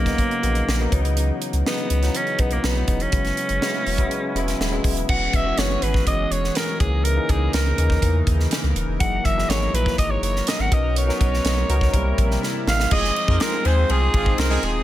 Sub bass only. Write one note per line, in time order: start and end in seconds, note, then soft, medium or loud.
0.00 0.14 B1 medium
0.43 0.63 A#1 medium
0.68 0.87 A#1 medium
0.92 1.31 C#2 loud
1.53 1.63 C#2 medium
1.90 2.10 C#2 medium
2.39 2.59 B1 medium
2.64 2.83 B1 medium
2.88 3.08 E1 medium
3.13 3.32 F#1 loud
3.49 3.59 F#1 medium
3.86 4.06 E1 medium
4.35 4.55 E1 medium
4.60 4.79 D#1 medium
4.84 5.04 D#1 medium
5.09 5.28 E1 loud
5.33 5.53 E1 loud
5.58 5.77 F#1 loud
5.82 6.02 G#1 medium
6.07 6.26 F#1 medium
6.31 6.50 E1 loud
6.80 7.19 C#2 loud
7.29 7.49 C#2 loud
7.53 7.73 C#2 medium
7.78 7.97 D#2 medium
8.02 8.22 E2 loud
8.27 8.46 D#2 medium
8.63 8.73 C#2 medium
8.75 8.85 D#1 loud
8.88 8.98 E1 medium
9.00 9.20 F#1 loud
9.25 9.45 F#1 loud
9.49 9.68 G#1 medium
9.73 9.93 A#1 medium
9.98 10.18 G#1 medium
10.22 10.42 F#1 medium
10.59 10.69 G#1 medium
10.72 11.11 B1 loud
11.21 11.40 B1 loud
11.44 11.64 B1 medium
11.69 11.89 C#2 loud
11.93 12.13 C2 loud
12.18 12.38 A#1 loud
12.67 12.86 A1 loud
12.91 13.11 F1 loud
13.28 13.38 F2 medium
13.65 13.84 D#2 loud
13.89 14.09 C2 medium
14.14 14.33 G#1 loud
14.38 14.58 C2 medium
14.63 14.82 D#1 loud